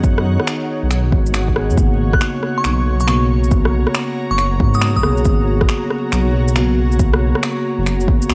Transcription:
Already playing: F#2 B3 D#4 F#4 G#4 C#5 F#5
0.00 D#3 B3, kick, shaker
0.08 F#4
0.18 cross-stick
0.40 cross-stick
0.47 finger snap, shaker
0.83 B1
0.91 finger snap, shaker
1.10 G#1 D#3 B3 F#4, kick
1.26 shaker
1.34 finger snap, shaker
1.48 kick
1.54 D#3 B3 G#4, cross-stick
1.70 F#2 C#3, shaker
1.76 G#1 A#3 B3 F#4 A#5, kick, shaker
1.81 F#4
2.13 F#6, kick, cross-stick
2.21 finger snap, shaker
2.43 cross-stick
2.58 C#6
2.64 B1, finger snap, shaker
3.00 C#6, shaker
3.06 C#3 A#3 B3, finger snap, shaker
3.10 F#4
3.44 C#3, shaker
3.50 A#3 B3, kick, shaker
3.55 F#4
3.65 cross-stick
3.87 cross-stick
3.95 finger snap, shaker
4.31 F#1 C#6
4.38 finger snap, shaker
4.58 G#2 C#3 A#3 B3 F#4, kick
4.74 D#6, shaker
4.82 finger snap, shaker
4.96 D#6, kick
5.02 B1 C#3 A#3 B3 G#4, cross-stick
5.17 C#3, shaker
5.24 G#1 A#3 B3, kick, shaker
5.30 F#4
5.61 kick, cross-stick
5.69 finger snap, shaker
5.90 cross-stick
6.12 B1, finger snap, shaker
6.48 shaker
6.54 C#3 A#3 B3, finger snap, shaker
6.58 F#4
6.92 C#3, shaker
6.98 A#3 B3, kick, shaker
7.03 F#4
7.13 cross-stick
7.35 cross-stick
7.43 finger snap, shaker
7.78 F#1
7.86 finger snap, shaker
8.00 shaker
8.06 C#3 A#3 B3, kick
8.10 F#4
8.22 shaker
8.30 C#2, finger snap, shaker

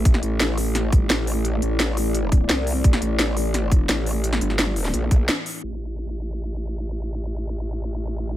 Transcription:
Already playing: A3 E4
0.05 A1 D5, kick, closed hi-hat
0.14 snare
0.23 A1, closed hi-hat
0.40 snare, closed hi-hat
0.58 open hi-hat
0.75 snare, closed hi-hat
0.84 G#1
0.92 kick, closed hi-hat
1.10 A1, snare, closed hi-hat
1.27 open hi-hat
1.45 closed hi-hat
1.62 A1, closed hi-hat
1.80 snare, closed hi-hat
1.97 open hi-hat
2.15 closed hi-hat
2.32 kick, closed hi-hat
2.49 C2, snare, closed hi-hat
2.67 open hi-hat
2.84 A1, kick, closed hi-hat
2.93 snare
3.02 A1, closed hi-hat
3.19 snare, closed hi-hat
3.37 open hi-hat
3.54 snare, closed hi-hat
3.72 kick, closed hi-hat
3.89 A1, snare, closed hi-hat
4.06 open hi-hat
4.24 closed hi-hat
4.33 snare
4.41 G1, closed hi-hat
4.50 snare
4.59 snare, closed hi-hat
4.76 open hi-hat
4.85 snare
4.94 A#1, closed hi-hat
5.11 kick, closed hi-hat
5.29 snare, closed hi-hat
5.46 open hi-hat
5.63 A1 A3 E4 A4

